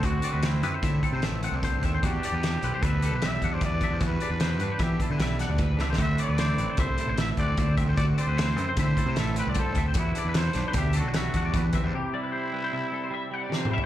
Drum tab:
HH |x--x--x--x--x--x--x--x--x--x--|x--x--x--x--x--x--x--x--x--x--|x--x--x--x--x--x--x--x--x-----|x--x--x--x--x--x--x--x--x--x--|
SD |------o-----------o-----------|------o-----------o-----------|------o-----o-----o--o-----o-o|------o-----------o-----------|
T2 |------------------------------|------------------------------|------------------------------|------------------------------|
FT |------------------------------|------------------------------|------------------------------|------------------------------|
BD |o-----------o--o--------o--o--|o-----------o--------o--o--o--|o-----------o--o--------o-----|o-----------o--------o--o--o--|

HH |x--x--x--x--x--x--x--x--x--x--|x--x--x--x--x--x--x--x--x--x--|------------------------------|
SD |------o-----o-----o-----------|------o--o--------o-----------|------------------------o-----|
T2 |------------------------------|------------------------------|--------------------------o---|
FT |------------------------------|------------------------------|----------------------------o-|
BD |o-----------o--o--------o--o--|o-----------o--------o--o--o--|------------------------------|